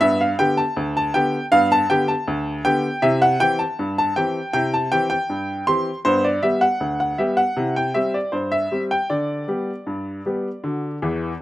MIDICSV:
0, 0, Header, 1, 2, 480
1, 0, Start_track
1, 0, Key_signature, 1, "major"
1, 0, Tempo, 755668
1, 9, Time_signature, 2, 2, 24, 8
1, 4329, Tempo, 766284
1, 7212, End_track
2, 0, Start_track
2, 0, Title_t, "Upright piano"
2, 0, Program_c, 0, 0
2, 4, Note_on_c, 0, 76, 118
2, 6, Note_on_c, 0, 43, 86
2, 20, Note_on_c, 0, 59, 58
2, 126, Note_off_c, 0, 76, 0
2, 132, Note_on_c, 0, 77, 89
2, 149, Note_off_c, 0, 59, 0
2, 211, Note_off_c, 0, 43, 0
2, 247, Note_on_c, 0, 79, 106
2, 250, Note_off_c, 0, 77, 0
2, 250, Note_on_c, 0, 50, 65
2, 252, Note_on_c, 0, 59, 57
2, 254, Note_on_c, 0, 67, 71
2, 364, Note_on_c, 0, 81, 98
2, 367, Note_off_c, 0, 79, 0
2, 381, Note_off_c, 0, 50, 0
2, 383, Note_off_c, 0, 59, 0
2, 384, Note_off_c, 0, 67, 0
2, 486, Note_on_c, 0, 38, 77
2, 593, Note_off_c, 0, 81, 0
2, 614, Note_on_c, 0, 81, 106
2, 691, Note_off_c, 0, 38, 0
2, 725, Note_on_c, 0, 79, 97
2, 729, Note_on_c, 0, 50, 62
2, 731, Note_off_c, 0, 81, 0
2, 731, Note_on_c, 0, 59, 59
2, 734, Note_on_c, 0, 67, 65
2, 860, Note_off_c, 0, 50, 0
2, 862, Note_off_c, 0, 59, 0
2, 864, Note_off_c, 0, 67, 0
2, 918, Note_off_c, 0, 79, 0
2, 963, Note_on_c, 0, 77, 122
2, 964, Note_on_c, 0, 43, 88
2, 979, Note_on_c, 0, 59, 57
2, 1085, Note_off_c, 0, 77, 0
2, 1091, Note_on_c, 0, 81, 127
2, 1108, Note_off_c, 0, 59, 0
2, 1170, Note_off_c, 0, 43, 0
2, 1206, Note_on_c, 0, 50, 58
2, 1206, Note_on_c, 0, 79, 96
2, 1209, Note_off_c, 0, 81, 0
2, 1209, Note_on_c, 0, 59, 58
2, 1211, Note_on_c, 0, 67, 72
2, 1322, Note_on_c, 0, 81, 94
2, 1326, Note_off_c, 0, 79, 0
2, 1338, Note_off_c, 0, 50, 0
2, 1340, Note_off_c, 0, 59, 0
2, 1342, Note_off_c, 0, 67, 0
2, 1445, Note_on_c, 0, 38, 81
2, 1612, Note_off_c, 0, 81, 0
2, 1650, Note_off_c, 0, 38, 0
2, 1682, Note_on_c, 0, 79, 108
2, 1684, Note_on_c, 0, 50, 70
2, 1686, Note_on_c, 0, 59, 60
2, 1689, Note_on_c, 0, 67, 64
2, 1816, Note_off_c, 0, 50, 0
2, 1818, Note_off_c, 0, 59, 0
2, 1821, Note_off_c, 0, 67, 0
2, 1912, Note_off_c, 0, 79, 0
2, 1920, Note_on_c, 0, 76, 100
2, 1922, Note_on_c, 0, 48, 100
2, 1935, Note_on_c, 0, 64, 58
2, 2043, Note_off_c, 0, 76, 0
2, 2043, Note_on_c, 0, 78, 105
2, 2065, Note_off_c, 0, 64, 0
2, 2128, Note_off_c, 0, 48, 0
2, 2161, Note_on_c, 0, 79, 113
2, 2163, Note_on_c, 0, 52, 60
2, 2165, Note_off_c, 0, 78, 0
2, 2165, Note_on_c, 0, 60, 51
2, 2168, Note_on_c, 0, 67, 60
2, 2279, Note_on_c, 0, 81, 87
2, 2284, Note_off_c, 0, 79, 0
2, 2296, Note_off_c, 0, 52, 0
2, 2297, Note_off_c, 0, 60, 0
2, 2300, Note_off_c, 0, 67, 0
2, 2407, Note_on_c, 0, 43, 68
2, 2511, Note_off_c, 0, 81, 0
2, 2530, Note_on_c, 0, 81, 107
2, 2611, Note_off_c, 0, 43, 0
2, 2644, Note_on_c, 0, 79, 91
2, 2647, Note_on_c, 0, 52, 57
2, 2649, Note_off_c, 0, 81, 0
2, 2650, Note_on_c, 0, 60, 52
2, 2651, Note_on_c, 0, 67, 60
2, 2779, Note_off_c, 0, 52, 0
2, 2781, Note_off_c, 0, 60, 0
2, 2782, Note_off_c, 0, 67, 0
2, 2871, Note_off_c, 0, 79, 0
2, 2880, Note_on_c, 0, 79, 105
2, 2882, Note_on_c, 0, 48, 77
2, 2894, Note_on_c, 0, 64, 59
2, 3004, Note_off_c, 0, 79, 0
2, 3009, Note_on_c, 0, 81, 99
2, 3024, Note_off_c, 0, 64, 0
2, 3088, Note_off_c, 0, 48, 0
2, 3123, Note_on_c, 0, 79, 110
2, 3126, Note_on_c, 0, 52, 57
2, 3128, Note_off_c, 0, 81, 0
2, 3129, Note_on_c, 0, 60, 59
2, 3130, Note_on_c, 0, 67, 60
2, 3229, Note_off_c, 0, 79, 0
2, 3238, Note_on_c, 0, 79, 97
2, 3258, Note_off_c, 0, 52, 0
2, 3261, Note_off_c, 0, 60, 0
2, 3261, Note_off_c, 0, 67, 0
2, 3363, Note_on_c, 0, 43, 60
2, 3569, Note_off_c, 0, 43, 0
2, 3585, Note_off_c, 0, 79, 0
2, 3602, Note_on_c, 0, 84, 106
2, 3604, Note_on_c, 0, 52, 53
2, 3606, Note_on_c, 0, 60, 55
2, 3609, Note_on_c, 0, 67, 63
2, 3737, Note_off_c, 0, 52, 0
2, 3738, Note_off_c, 0, 60, 0
2, 3741, Note_off_c, 0, 67, 0
2, 3796, Note_off_c, 0, 84, 0
2, 3842, Note_on_c, 0, 72, 108
2, 3844, Note_on_c, 0, 43, 86
2, 3856, Note_on_c, 0, 59, 60
2, 3965, Note_off_c, 0, 72, 0
2, 3966, Note_on_c, 0, 74, 79
2, 3986, Note_off_c, 0, 59, 0
2, 4049, Note_off_c, 0, 43, 0
2, 4082, Note_on_c, 0, 76, 88
2, 4085, Note_on_c, 0, 55, 48
2, 4085, Note_on_c, 0, 59, 54
2, 4087, Note_off_c, 0, 74, 0
2, 4090, Note_on_c, 0, 67, 58
2, 4199, Note_on_c, 0, 78, 97
2, 4205, Note_off_c, 0, 76, 0
2, 4219, Note_off_c, 0, 55, 0
2, 4219, Note_off_c, 0, 59, 0
2, 4222, Note_off_c, 0, 67, 0
2, 4323, Note_on_c, 0, 38, 63
2, 4431, Note_off_c, 0, 78, 0
2, 4445, Note_on_c, 0, 78, 80
2, 4528, Note_off_c, 0, 38, 0
2, 4560, Note_on_c, 0, 55, 46
2, 4560, Note_on_c, 0, 76, 74
2, 4565, Note_off_c, 0, 78, 0
2, 4565, Note_on_c, 0, 59, 51
2, 4568, Note_on_c, 0, 67, 64
2, 4676, Note_on_c, 0, 78, 95
2, 4682, Note_off_c, 0, 76, 0
2, 4693, Note_off_c, 0, 55, 0
2, 4697, Note_off_c, 0, 59, 0
2, 4699, Note_off_c, 0, 67, 0
2, 4800, Note_on_c, 0, 48, 75
2, 4814, Note_on_c, 0, 64, 53
2, 4907, Note_off_c, 0, 78, 0
2, 4923, Note_on_c, 0, 79, 93
2, 4942, Note_off_c, 0, 64, 0
2, 5005, Note_off_c, 0, 48, 0
2, 5036, Note_on_c, 0, 76, 87
2, 5039, Note_on_c, 0, 55, 42
2, 5041, Note_on_c, 0, 60, 52
2, 5043, Note_off_c, 0, 79, 0
2, 5043, Note_on_c, 0, 67, 58
2, 5159, Note_off_c, 0, 76, 0
2, 5160, Note_on_c, 0, 74, 71
2, 5172, Note_off_c, 0, 55, 0
2, 5173, Note_off_c, 0, 60, 0
2, 5175, Note_off_c, 0, 67, 0
2, 5272, Note_on_c, 0, 72, 67
2, 5276, Note_on_c, 0, 43, 57
2, 5281, Note_off_c, 0, 74, 0
2, 5394, Note_on_c, 0, 76, 92
2, 5397, Note_off_c, 0, 72, 0
2, 5482, Note_off_c, 0, 43, 0
2, 5518, Note_on_c, 0, 55, 44
2, 5521, Note_on_c, 0, 60, 44
2, 5523, Note_on_c, 0, 67, 47
2, 5589, Note_off_c, 0, 76, 0
2, 5642, Note_on_c, 0, 79, 91
2, 5652, Note_off_c, 0, 55, 0
2, 5653, Note_off_c, 0, 60, 0
2, 5655, Note_off_c, 0, 67, 0
2, 5758, Note_on_c, 0, 74, 77
2, 5760, Note_on_c, 0, 50, 69
2, 5762, Note_off_c, 0, 79, 0
2, 5966, Note_off_c, 0, 50, 0
2, 5997, Note_on_c, 0, 55, 50
2, 6001, Note_on_c, 0, 59, 42
2, 6003, Note_on_c, 0, 67, 48
2, 6132, Note_off_c, 0, 55, 0
2, 6135, Note_off_c, 0, 59, 0
2, 6136, Note_off_c, 0, 67, 0
2, 6240, Note_on_c, 0, 43, 54
2, 6447, Note_off_c, 0, 43, 0
2, 6485, Note_on_c, 0, 55, 43
2, 6489, Note_on_c, 0, 59, 43
2, 6489, Note_on_c, 0, 67, 47
2, 6618, Note_off_c, 0, 55, 0
2, 6620, Note_off_c, 0, 59, 0
2, 6621, Note_off_c, 0, 67, 0
2, 6723, Note_on_c, 0, 50, 70
2, 6735, Note_on_c, 0, 66, 37
2, 6865, Note_off_c, 0, 66, 0
2, 6929, Note_off_c, 0, 50, 0
2, 6964, Note_on_c, 0, 52, 69
2, 6966, Note_on_c, 0, 40, 71
2, 7145, Note_off_c, 0, 52, 0
2, 7146, Note_off_c, 0, 40, 0
2, 7212, Note_off_c, 0, 74, 0
2, 7212, End_track
0, 0, End_of_file